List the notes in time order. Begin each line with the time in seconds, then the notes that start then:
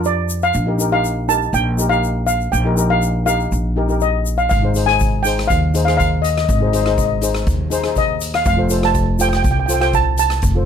Already playing: F2 D4 F4 A#4
0.04 D5, shaker
0.29 shaker
0.42 F5, shaker
0.54 A#1, shaker
0.66 D#4 G4 A#4
0.78 D#4 G4 A#4, shaker
0.91 D#4 G4 A#4 F5
1.05 shaker
1.28 D#4 G4 A#4 A5, shaker
1.42 shaker
1.53 A#1 G5, shaker
1.78 D#4 G4 A#4, shaker
1.89 D#4 G4 A#4 F5, shaker
2.04 shaker
2.27 F5, shaker
2.40 shaker
2.52 A#1 G5, shaker
2.65 D#4 G4 A#4
2.77 D#4 G4 A#4, shaker
2.90 D#4 G4 A#4 F5
3.02 shaker
3.26 D#4 G4 A#4 F5, shaker
3.40 shaker
3.52 A#1, shaker
3.76 D#4 G4 A#4
3.88 D#4 G4 A#4, shaker
4.01 D#5, shaker
4.26 shaker
4.38 F5, shaker
4.49 G#1 F5, kick, closed hi-hat, shaker
4.62 D#4 G#4 C5
4.75 D#4 G#4 C5, closed hi-hat, shaker
4.86 D#4 G#4 C5 G#5, cross-stick, closed hi-hat
5.00 kick, closed hi-hat, shaker
5.23 D#4 G#4 C5 G5, closed hi-hat, shaker
5.37 cross-stick, closed hi-hat, shaker
5.48 D#2 F5, kick, closed hi-hat, shaker
5.74 D#4 G#4 C5, closed hi-hat, shaker
5.85 D#4 G#4 C5 F5, cross-stick, closed hi-hat, shaker
5.97 F5, kick, closed hi-hat, shaker
6.22 D#5, closed hi-hat, shaker
6.30 D#5
6.37 D#5, cross-stick, closed hi-hat, shaker
6.45 G#1 D#5, kick, closed hi-hat
6.49 D#5, shaker
6.61 D#4 G#4 C5 D#5
6.67 D#5
6.73 D#4 G#4 C5 D#5, closed hi-hat, shaker
6.82 D#4 D#5, cross-stick, closed hi-hat
6.87 G#4 C5 D#5
6.98 D#5, kick, closed hi-hat, shaker
7.05 D#5
7.22 D#4 G#4 C5, closed hi-hat, shaker
7.35 cross-stick, closed hi-hat, shaker
7.47 D#2, kick, closed hi-hat, shaker
7.70 D#4 G#4 C5, closed hi-hat, shaker
7.83 D#4 G#4 C5, cross-stick, closed hi-hat, shaker
7.96 D#5, kick, closed hi-hat, shaker
8.21 closed hi-hat, shaker
8.34 F5, cross-stick, closed hi-hat, shaker
8.45 F1 F5, kick, closed hi-hat, shaker
8.57 F4 A4 C5
8.69 F4 A4 C5, closed hi-hat, shaker
8.81 F4 A4 C5 A5, cross-stick, closed hi-hat
8.95 kick, closed hi-hat, shaker
9.19 F4 A4 C5 G5, closed hi-hat, shaker
9.29 G5, shaker
9.33 G5, cross-stick, closed hi-hat
9.43 C2 G5, kick, closed hi-hat, shaker
9.51 G5
9.60 G5
9.66 F4 A4 C5 G5, closed hi-hat, shaker
9.73 G5
9.80 F4 A4 C5 G5, cross-stick, closed hi-hat, shaker
9.93 A5, kick, closed hi-hat, shaker
10.18 A5, closed hi-hat, shaker
10.30 cross-stick, closed hi-hat, shaker
10.42 F1, kick, closed hi-hat, shaker
10.55 F4 A4 C5